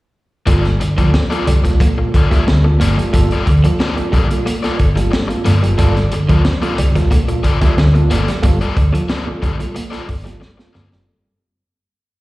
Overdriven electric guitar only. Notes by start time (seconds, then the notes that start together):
0.46 A#3 F4 A4 D5
0.80 muted overdriven electric guitar stroke
0.98 A#3 F4 A4 D5
1.14 muted overdriven electric guitar stroke
1.30 A#3 F4 A4 D5
1.46 muted overdriven electric guitar stroke
1.64 muted overdriven electric guitar stroke
1.80 muted overdriven electric guitar stroke
1.98 muted overdriven electric guitar stroke
2.15 A#3 F4 A4 D5
2.31 A#3 F4 A4 E5
2.47 muted overdriven electric guitar stroke
2.64 muted overdriven electric guitar stroke
2.81 A#3 F4 A4 D5
2.98 muted overdriven electric guitar stroke
3.14 muted overdriven electric guitar stroke
3.32 A#3 F4 A4 D5
3.48 muted overdriven electric guitar stroke
3.65 muted overdriven electric guitar stroke
3.80 A#3 F4 A4 D5
3.97 muted overdriven electric guitar stroke
4.12 A#3 F4 A4 D5
4.29 muted overdriven electric guitar stroke
4.46 muted overdriven electric guitar stroke
4.63 A#3 F4 A4 D5
4.78 muted overdriven electric guitar stroke
4.96 muted overdriven electric guitar stroke
5.11 muted overdriven electric guitar stroke
5.28 muted overdriven electric guitar stroke
5.45 A#3 F4 A4 D5
5.62 muted overdriven electric guitar stroke
5.78 A#3 F4 A4 D5
6.13 muted overdriven electric guitar stroke
6.30 A#3 F4 A4 D5
6.44 muted overdriven electric guitar stroke
6.62 A#3 F4 A4 D5
6.77 muted overdriven electric guitar stroke
6.96 muted overdriven electric guitar stroke
7.11 muted overdriven electric guitar stroke
7.28 muted overdriven electric guitar stroke
7.43 A#3 F4 A4 D5
7.61 A#3 F4 A4 E5
7.78 muted overdriven electric guitar stroke
7.94 muted overdriven electric guitar stroke
8.10 A#3 F4 A4 D5
8.30 muted overdriven electric guitar stroke
8.44 muted overdriven electric guitar stroke
8.61 A#3 F4 A4 D5
8.76 muted overdriven electric guitar stroke
8.93 muted overdriven electric guitar stroke
9.09 A#3 F4 A4 D5
9.27 muted overdriven electric guitar stroke
9.42 A#3 F4 A4 D5
9.59 muted overdriven electric guitar stroke
9.74 muted overdriven electric guitar stroke
9.91 A#3 F4 A4 D5
10.08 muted overdriven electric guitar stroke
10.24 muted overdriven electric guitar stroke
10.40 muted overdriven electric guitar stroke
10.57 muted overdriven electric guitar stroke
10.73 A#3 F4 A4 D5
10.90 muted overdriven electric guitar stroke